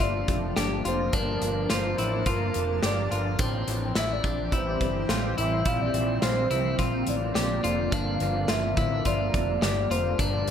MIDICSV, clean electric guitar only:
0, 0, Header, 1, 2, 480
1, 0, Start_track
1, 0, Tempo, 566038
1, 960, Time_signature, 4, 2, 24, 8
1, 8909, End_track
2, 0, Start_track
2, 0, Title_t, "Clean electric guitar"
2, 0, Program_c, 0, 27
2, 0, Note_on_c, 0, 65, 80
2, 476, Note_off_c, 0, 65, 0
2, 479, Note_on_c, 0, 67, 70
2, 717, Note_off_c, 0, 67, 0
2, 720, Note_on_c, 0, 65, 73
2, 960, Note_off_c, 0, 65, 0
2, 963, Note_on_c, 0, 62, 89
2, 1441, Note_off_c, 0, 62, 0
2, 1444, Note_on_c, 0, 65, 79
2, 1680, Note_off_c, 0, 65, 0
2, 1683, Note_on_c, 0, 64, 68
2, 1919, Note_off_c, 0, 64, 0
2, 1922, Note_on_c, 0, 65, 83
2, 2398, Note_off_c, 0, 65, 0
2, 2401, Note_on_c, 0, 67, 79
2, 2636, Note_off_c, 0, 67, 0
2, 2640, Note_on_c, 0, 65, 71
2, 2879, Note_on_c, 0, 60, 84
2, 2880, Note_off_c, 0, 65, 0
2, 3359, Note_off_c, 0, 60, 0
2, 3359, Note_on_c, 0, 64, 78
2, 3596, Note_on_c, 0, 62, 75
2, 3599, Note_off_c, 0, 64, 0
2, 3838, Note_off_c, 0, 62, 0
2, 3839, Note_on_c, 0, 64, 80
2, 4316, Note_off_c, 0, 64, 0
2, 4320, Note_on_c, 0, 65, 70
2, 4556, Note_off_c, 0, 65, 0
2, 4560, Note_on_c, 0, 64, 71
2, 4789, Note_off_c, 0, 64, 0
2, 4799, Note_on_c, 0, 64, 86
2, 5275, Note_off_c, 0, 64, 0
2, 5278, Note_on_c, 0, 65, 81
2, 5514, Note_off_c, 0, 65, 0
2, 5518, Note_on_c, 0, 64, 68
2, 5754, Note_off_c, 0, 64, 0
2, 5757, Note_on_c, 0, 65, 80
2, 6231, Note_off_c, 0, 65, 0
2, 6235, Note_on_c, 0, 67, 69
2, 6474, Note_off_c, 0, 67, 0
2, 6477, Note_on_c, 0, 65, 64
2, 6718, Note_off_c, 0, 65, 0
2, 6718, Note_on_c, 0, 62, 83
2, 7198, Note_off_c, 0, 62, 0
2, 7198, Note_on_c, 0, 65, 76
2, 7433, Note_off_c, 0, 65, 0
2, 7436, Note_on_c, 0, 64, 71
2, 7676, Note_off_c, 0, 64, 0
2, 7680, Note_on_c, 0, 65, 81
2, 8156, Note_off_c, 0, 65, 0
2, 8160, Note_on_c, 0, 67, 74
2, 8399, Note_off_c, 0, 67, 0
2, 8403, Note_on_c, 0, 65, 74
2, 8641, Note_off_c, 0, 65, 0
2, 8642, Note_on_c, 0, 62, 86
2, 8909, Note_off_c, 0, 62, 0
2, 8909, End_track
0, 0, End_of_file